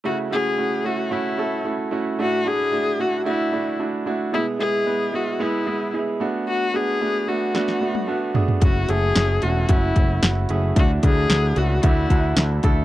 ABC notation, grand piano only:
X:1
M:4/4
L:1/8
Q:1/4=112
K:F#m
V:1 name="Grand piano"
[A,CEF] [A,CEF] [A,CEF] [A,CEF] [A,CEF] [A,CEA] [A,CEF] [A,CEF] | [A,DEF] [A,DEF] [A,DEF] [A,DEF] [A,DEF] [A,DEF] [A,DEF] [A,DEF] | [G,B,EG] [G,B,EG] [G,B,EB] [G,B,EG] [G,B,EG] [G,B,EG] [G,B,EG] [A,B,DF]- | [A,B,DF] [A,B,DF] [A,B,DF] [A,B,DF] [A,B,DF] [A,B,DF] [A,B,DF] [A,B,DG] |
[A,CEF] [A,CEA] [A,CEF] [A,CEF] [A,CEF] [A,CEF] [A,CEF] [A,CEG] | [A,DEF] [A,DEF] [A,DEF] [A,DEF] [A,DEF] [A,DEF] [A,DEF] [A,DEA] |]
V:2 name="Grand piano" clef=bass
C,3 z4 z | A,,3 z4 z | B,,3 z4 z | z8 |
C,3 z4 z | A,,3 z4 z |]